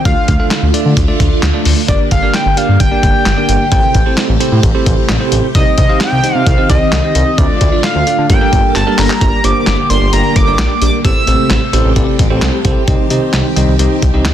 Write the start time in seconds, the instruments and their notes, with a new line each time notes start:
0.05 analog synth bass D2, string machine D3 A3 F4, tine electric piano A3 D4 F4 A4 D5, analog synth lead F5, kick, closed hi-hat
0.28 analog synth bass D2, kick, closed hi-hat
0.40 tine electric piano A3 D4 F4 A4 F5
0.51 snare, clap, closed hi-hat
0.63 analog synth bass D2
0.74 tine electric piano A3 D4 F4 A4 D5, closed hi-hat
0.85 analog synth bass D3
0.97 analog synth bass D2, kick, closed hi-hat
1.08 tine electric piano A3 D4 F4 A4 D5
1.20 analog synth bass D2, kick, closed hi-hat
1.43 analog synth bass D2, snare, clap, closed hi-hat
1.54 tine electric piano A3 D4 F4 A4 D5
1.65 analog synth bass D2, open hi-hat
1.88 analog synth bass G1, tine electric piano A#3 D4 G4 A#4 D5, string machine A#3 G4, analog synth lead D5, kick, closed hi-hat
2.11 analog synth bass G1, analog synth lead F5, kick, closed hi-hat
2.23 tine electric piano A#3 D4 G4 A#4 D5
2.34 analog synth lead G5, snare, clap, closed hi-hat
2.46 analog synth bass G1
2.57 tine electric piano A#3 D4 G4 A#4 D5, analog synth lead F5, closed hi-hat
2.69 analog synth bass G2
2.80 analog synth bass G1, analog synth lead G5, kick, closed hi-hat
2.91 tine electric piano A#3 D4 G4 A#4 D5
3.03 analog synth bass G1, kick, closed hi-hat
3.26 analog synth bass G1, snare, clap, closed hi-hat
3.37 tine electric piano A#3 D4 G4 A#4 D5
3.49 analog synth bass G1, closed hi-hat
3.72 analog synth bass A1, string machine C3 A3, tine electric piano C4 E4 G4 A4 C5, analog synth lead G5, kick, closed hi-hat
3.94 analog synth bass A1, kick, closed hi-hat
4.06 tine electric piano C4 E4 G4 A4 C5
4.17 snare, clap, closed hi-hat
4.29 analog synth bass A1
4.40 tine electric piano C4 E4 G4 A4 C5, closed hi-hat
4.52 analog synth bass A2
4.63 analog synth bass A1, kick, closed hi-hat
4.75 tine electric piano C4 E4 G4 A4 C5
4.86 analog synth bass A1, kick, closed hi-hat
5.09 analog synth bass A1, snare, clap, closed hi-hat
5.21 tine electric piano C4 E4 G4 A4 C5
5.32 analog synth bass A1, closed hi-hat
5.55 analog synth bass C2, string machine D#3 C4, tine electric piano C4 D#4 G4 C5 D#5, analog synth lead D#5, kick, closed hi-hat
5.78 analog synth bass C2, analog synth lead D#5, kick, closed hi-hat
5.89 tine electric piano C4 D#4 G4 C5 F5
6.01 analog synth lead G5, snare, clap, closed hi-hat
6.12 analog synth bass C2
6.24 tine electric piano C4 D#4 G4 C5 D#5, closed hi-hat
6.35 analog synth bass C3, analog synth lead F5
6.46 analog synth bass C2, analog synth lead F5, kick, closed hi-hat
6.58 tine electric piano C4 D#4 G4 C5 D#5
6.70 analog synth bass C2, analog synth lead D#5, kick, closed hi-hat
6.92 analog synth bass C2, snare, clap, closed hi-hat
7.04 tine electric piano C4 D#4 G4 C5 D#5
7.15 analog synth bass C2, closed hi-hat
7.38 analog synth bass D2, string machine D3 A3 F4, tine electric piano A3 D4 F4 A4 D5, analog synth lead D5, kick, closed hi-hat
7.61 analog synth bass D2, kick, closed hi-hat
7.72 tine electric piano A3 D4 F4 A4 D5
7.84 analog synth lead F5, snare, clap, closed hi-hat
7.95 analog synth bass D2
8.07 tine electric piano A3 D4 F4 A4 D5, closed hi-hat
8.18 analog synth bass D3
8.30 analog synth bass G1, string machine G3 A#3 A5, tine electric piano A#3 D4 G4 A4 A#4, analog synth lead G5, kick, closed hi-hat
8.41 tine electric piano A#3 D4 G4 A4 A#4
8.53 analog synth bass G1, kick, closed hi-hat
8.75 analog synth bass G1, analog synth lead A5, clap, closed hi-hat
8.87 tine electric piano A#3 D4 G4 A4 A#4
8.98 analog synth bass G1, analog synth lead A#5, clap, open hi-hat
9.10 clap
9.21 analog synth bass G1, string machine D3 A#3 G4, tine electric piano A#3 D4 G4 A#4 D5, analog synth lead A#5, kick, closed hi-hat
9.44 analog synth bass G1, tine electric piano A#3 D4 G4 A#4 C5, analog synth lead D6, closed hi-hat
9.67 analog synth bass G1, snare, clap, closed hi-hat
9.90 analog synth bass G1, tine electric piano A#3 D4 G4 A#4 D5, analog synth lead C6, closed hi-hat
10.01 analog synth bass G1
10.13 analog synth bass G1, tine electric piano A#3 D4 G4 A#4 D5, analog synth lead A#5, closed hi-hat
10.36 analog synth bass G1, analog synth lead D6, kick, closed hi-hat
10.47 analog synth bass G1, tine electric piano A#3 D4 G4 A#4 D5
10.59 analog synth bass A#1, snare, clap, closed hi-hat
10.82 analog synth bass A#1, tine electric piano A#3 D4 G4 A#4 D5, analog synth lead D6, closed hi-hat
11.04 analog synth bass A1, string machine C3 A3 G4, tine electric piano C4 E4 G4 A4 C5, analog synth lead E6, kick, closed hi-hat
11.27 analog synth bass A1, tine electric piano C4 E4 G4 A4 C5, closed hi-hat
11.50 analog synth bass A1, snare, clap, closed hi-hat
11.73 analog synth bass A1, tine electric piano C4 E4 G4 A4 C5, closed hi-hat
11.85 analog synth bass A1
11.96 analog synth bass A1, tine electric piano C4 E4 G4 A4 D5, kick, closed hi-hat
12.19 analog synth bass A1, kick, closed hi-hat
12.30 analog synth bass A1, tine electric piano C4 E4 G4 A4 C5
12.42 analog synth bass C2, snare, clap, closed hi-hat
12.65 analog synth bass C2, tine electric piano C4 E4 G4 A4 C5, kick, closed hi-hat
12.88 analog synth bass C2, string machine D#3 C4, tine electric piano C4 D#4 G4 C5 D#5, kick, closed hi-hat
13.10 analog synth bass C2, tine electric piano C4 D#4 G4 C5 D#5, closed hi-hat
13.33 analog synth bass C2, snare, clap, closed hi-hat
13.56 analog synth bass C2, tine electric piano C4 D#4 G4 C5 D#5, closed hi-hat
13.68 analog synth bass C2
13.79 analog synth bass C2, tine electric piano C4 D#4 G4 C5 D#5, closed hi-hat
14.02 analog synth bass C2, kick, closed hi-hat
14.14 analog synth bass C2, tine electric piano C4 D#4 G4 C5 D#5
14.25 analog synth bass D2, snare, clap, closed hi-hat